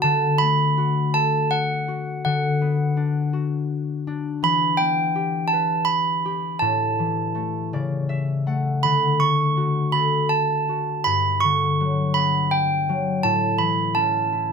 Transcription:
0.00 2.24 D3 medium
0.00 2.61 B3 soft
0.00 0.77 F#4 soft
0.00 0.41 A5 medium
0.38 3.74 A3 soft
0.38 1.16 B5 medium
0.77 1.88 F#4 soft
1.14 3.33 A4 soft
1.14 1.52 A5 medium
1.51 2.20 F#5 medium
1.88 3.33 F#4 soft
2.25 4.47 D3 medium
2.25 3.29 F#5 medium
2.61 4.80 B3 soft
2.97 4.07 D4 medium
3.33 5.21 F#4 soft
4.07 6.87 D4 soft
4.43 6.65 E3 medium
4.43 4.80 B5 medium
4.77 7.91 B3 soft
4.77 5.52 G5 medium
5.15 6.25 G4 medium
5.48 5.87 A5 medium
5.53 7.58 B4 soft
5.85 6.61 B5 medium
6.25 8.53 G4 soft
6.59 7.76 A2 medium
6.59 7.67 A5 medium
6.99 7.76 E3 soft
7.35 8.46 A3 soft
7.73 8.88 C#3 soft
7.73 9.58 D5 medium
8.09 9.81 E5 medium
8.46 9.20 A3 soft
8.46 10.08 F#5 medium
8.83 11.11 D3 medium
8.83 9.21 B5 medium
9.20 12.54 A3 soft
9.20 9.90 C#6 medium
9.57 10.68 F#4 soft
9.92 12.13 A4 soft
9.92 10.09 B5 medium
10.29 11.07 A5 medium
10.69 11.12 F#4 soft
11.04 13.28 G2 medium
11.04 11.43 B5 medium
11.40 13.28 D3 soft
11.40 12.16 C#6 medium
11.81 12.88 F#3 soft
12.14 14.53 B3 soft
12.14 12.52 B5 medium
12.51 13.26 G5 medium
12.89 13.28 F#3 medium
13.23 14.53 A2 medium
13.23 13.60 A5 medium
13.58 14.53 E3 soft
13.58 13.96 B5 medium
13.95 14.53 C#4 medium
13.95 14.53 A5 medium
14.32 14.53 E4 soft

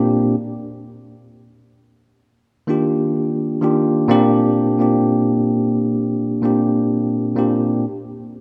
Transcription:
0.00 0.36 A#2 medium
0.00 0.35 A#3 medium
0.00 0.35 C4 medium
0.00 0.36 D4 medium
0.00 0.35 G4 medium
2.67 3.28 D#3 medium
2.67 3.28 A#3 medium
2.67 3.29 D4 medium
2.67 3.29 F4 medium
2.67 3.29 G4 medium
3.61 3.92 D#3 medium
3.61 3.92 A#3 medium
3.61 3.92 D4 medium
3.61 3.93 F4 medium
3.61 3.93 G4 loud
4.08 4.53 A#2 loud
4.08 4.54 A#3 loud
4.08 4.54 C4 loud
4.08 4.55 D4 loud
4.08 4.55 G4 loud
4.79 5.84 A#2 medium
4.79 5.85 A#3 medium
4.79 5.85 C4 medium
4.79 5.85 D4 medium
4.79 5.86 G4 medium
6.42 7.03 A#2 medium
6.42 7.03 A#3 medium
6.42 7.04 C4 medium
6.42 7.04 D4 medium
6.42 7.05 G4 medium
7.36 7.83 A#2 medium
7.36 7.83 A#3 medium
7.36 7.84 C4 medium
7.36 7.84 D4 medium
7.36 7.85 G4 medium

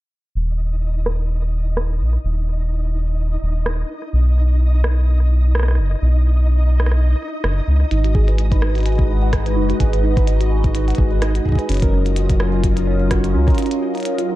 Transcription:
0.35 2.02 D#1 medium
0.35 14.36 D#4 medium
0.35 14.36 D#5 medium
1.06 cross-stick loud
1.77 cross-stick loud
2.01 2.17 A#1 medium
2.24 3.37 D#1 medium
3.42 3.84 D#1 medium
3.66 cross-stick loud
4.13 5.80 B1 medium
4.84 cross-stick loud
5.55 cross-stick loud
5.59 cross-stick medium
5.63 cross-stick medium
5.68 cross-stick medium
5.71 cross-stick soft
5.75 5.95 F#1 medium
5.75 cross-stick soft
6.02 7.15 B1 medium
6.80 cross-stick medium
6.86 cross-stick medium
6.91 cross-stick medium
7.44 7.61 F#1 loud
7.44 cross-stick loud
7.68 7.84 C#2 medium
7.91 9.58 G#1 medium
7.91 11.69 G#3 medium
7.91 8.04 D#4 loud
7.91 closed hi-hat medium
8.04 12.54 D#4 medium
8.04 8.14 F#4 medium
8.04 closed hi-hat soft
8.15 8.23 G#4 loud
8.15 kick medium
8.28 8.38 B4 medium
8.28 11.69 B4 medium
8.28 closed hi-hat soft
8.38 8.47 D#4 loud
8.38 closed hi-hat medium
8.51 11.69 F#4 medium
8.51 8.58 B4 loud
8.51 kick loud
8.51 closed hi-hat soft
8.62 8.70 D#4 medium
8.62 cross-stick loud
8.75 8.82 F#4 medium
8.75 closed hi-hat soft
8.78 closed hi-hat soft
8.80 closed hi-hat soft
8.83 closed hi-hat soft
8.86 8.91 G#4 medium
8.86 closed hi-hat medium
8.96 9.05 B4 medium
8.96 kick medium
8.96 closed hi-hat soft
9.09 9.22 D#4 medium
9.22 9.29 F#4 loud
9.33 9.38 G#4 medium
9.33 kick loud
9.33 cross-stick loud
9.33 closed hi-hat medium
9.46 9.53 B4 medium
9.46 closed hi-hat soft
9.57 9.73 F#1 medium
9.57 9.69 D#4 medium
9.70 9.80 F#4 medium
9.70 closed hi-hat soft
9.80 10.93 G#1 medium
9.80 9.88 G#4 loud
9.80 kick medium
9.80 closed hi-hat medium
9.93 10.03 B4 medium
9.93 closed hi-hat soft
10.04 10.12 D#4 loud
10.17 10.24 B4 loud
10.17 kick loud
10.17 closed hi-hat soft
10.27 10.36 D#4 medium
10.27 closed hi-hat medium
10.41 10.47 F#4 medium
10.41 closed hi-hat soft
10.51 10.56 G#4 medium
10.64 10.71 B4 medium
10.64 kick loud
10.64 closed hi-hat soft
10.75 10.87 D#4 medium
10.75 closed hi-hat medium
10.88 10.94 F#4 loud
10.88 closed hi-hat soft
10.90 closed hi-hat soft
10.95 11.40 G#1 medium
10.95 11.03 G#4 medium
10.95 kick loud
10.95 closed hi-hat soft
11.12 11.18 B4 medium
11.22 11.34 D#4 medium
11.22 cross-stick loud
11.22 closed hi-hat medium
11.35 11.45 F#4 medium
11.35 closed hi-hat soft
11.45 11.54 G#4 medium
11.45 kick soft
11.49 kick medium
11.52 kick medium
11.55 11.69 B4 medium
11.55 kick medium
11.55 closed hi-hat soft
11.69 13.36 F#1 medium
11.69 14.36 F#3 medium
11.69 11.77 C#4 loud
11.69 closed hi-hat medium
11.72 closed hi-hat medium
11.74 closed hi-hat soft
11.77 closed hi-hat soft
11.80 11.89 A#4 loud
11.80 closed hi-hat soft
11.82 kick loud
11.82 closed hi-hat soft
11.87 14.36 F4 medium
11.93 12.01 C#4 medium
12.00 14.36 C#4 medium
12.06 12.12 F4 medium
12.06 closed hi-hat soft
12.16 12.21 F#4 medium
12.16 closed hi-hat medium
12.30 12.36 A#4 medium
12.30 kick medium
12.30 closed hi-hat soft
12.34 14.36 A#4 medium
12.40 12.52 C#4 medium
12.40 cross-stick loud
12.53 12.60 F4 medium
12.64 12.69 F#4 medium
12.64 kick loud
12.64 closed hi-hat medium
12.77 12.83 A#4 medium
12.77 closed hi-hat soft
12.87 13.00 C#4 loud
13.00 13.10 F4 medium
13.11 13.19 F#4 medium
13.11 kick medium
13.11 cross-stick loud
13.11 closed hi-hat medium
13.24 13.34 A#4 medium
13.24 closed hi-hat soft
13.34 13.51 C#2 medium
13.34 13.43 C#4 loud
13.48 13.54 A#4 loud
13.48 kick loud
13.48 closed hi-hat soft
13.50 closed hi-hat soft
13.55 13.66 C#4 medium
13.55 closed hi-hat soft
13.58 closed hi-hat medium
13.62 closed hi-hat soft
13.66 closed hi-hat soft
13.71 13.78 F4 medium
13.71 closed hi-hat soft
13.82 13.87 F#4 medium
13.95 14.01 A#4 medium
13.95 closed hi-hat soft
13.98 closed hi-hat soft
14.00 closed hi-hat soft
14.03 14.18 C#4 medium
14.03 closed hi-hat soft
14.05 closed hi-hat medium
14.19 14.25 F4 loud
14.19 closed hi-hat soft
14.29 14.34 F#4 medium

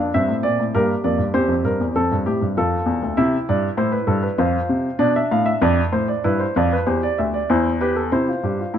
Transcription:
0.00 0.11 F2 medium
0.00 0.12 D4 medium
0.00 0.70 A4 medium
0.14 0.28 G2 medium
0.14 0.72 C4 medium
0.14 0.33 E5 medium
0.28 0.43 A2 medium
0.43 0.58 A#2 medium
0.43 0.62 D5 medium
0.59 0.74 A2 medium
0.75 0.93 G2 medium
0.75 0.93 A#3 medium
0.75 1.32 G4 medium
0.75 0.93 A#4 medium
1.04 1.19 F2 medium
1.04 1.22 A#3 medium
1.04 1.23 D5 medium
1.18 1.33 G2 medium
1.34 1.49 E2 medium
1.34 1.93 C4 medium
1.34 1.93 G4 medium
1.34 1.53 C5 medium
1.48 1.64 F2 medium
1.64 1.79 G2 medium
1.64 1.83 A#4 medium
1.80 1.95 E2 medium
1.96 2.10 F2 medium
1.96 3.13 C4 medium
1.96 2.14 A4 medium
2.11 2.25 G2 medium
2.26 2.41 A2 medium
2.26 2.45 G4 medium
2.41 2.56 G2 medium
2.57 2.76 F2 medium
2.57 3.15 F4 medium
2.57 3.16 A4 medium
2.86 3.01 E2 medium
3.02 3.16 D2 medium
3.17 3.36 C3 medium
3.17 3.76 E4 medium
3.17 3.36 E5 medium
3.49 3.67 G2 medium
3.49 3.67 D5 medium
3.77 3.96 A2 medium
3.77 4.36 E4 medium
3.77 3.92 C5 medium
3.92 4.07 B4 medium
4.07 4.26 G2 medium
4.07 4.22 A4 medium
4.23 4.37 B4 medium
4.38 4.57 F2 medium
4.38 4.97 F4 medium
4.38 4.98 C5 medium
4.69 4.88 C3 medium
4.99 5.18 B2 medium
4.99 6.19 D4 medium
4.99 5.14 D5 medium
5.16 5.30 E5 medium
5.31 5.50 A2 medium
5.31 5.46 F5 medium
5.46 5.60 E5 medium
5.62 5.80 F2 loud
5.62 5.81 D5 medium
5.92 6.11 A2 medium
5.92 6.07 C5 medium
6.08 6.23 D5 medium
6.24 6.43 G2 medium
6.24 6.43 E4 medium
6.24 6.39 B4 medium
6.40 6.54 C5 medium
6.56 6.75 F2 medium
6.56 6.75 F4 medium
6.56 6.70 D5 medium
6.72 6.86 B4 medium
6.87 7.06 E2 medium
6.87 7.47 G4 medium
6.87 7.01 C5 medium
7.03 7.17 D5 medium
7.18 7.38 D2 medium
7.18 7.33 E5 medium
7.34 7.48 D5 medium
7.50 8.10 E2 medium
7.50 7.69 E4 medium
7.50 7.69 C5 medium
7.81 8.00 G4 medium
7.81 7.95 B4 medium
7.96 8.11 A4 medium
8.12 8.31 C3 medium
8.12 8.27 E4 medium
8.12 8.78 C5 medium
8.28 8.42 F4 medium
8.43 8.62 G2 medium
8.43 8.58 G4 medium
8.59 8.74 F4 soft
8.74 8.78 A2 medium
8.74 8.78 E4 medium

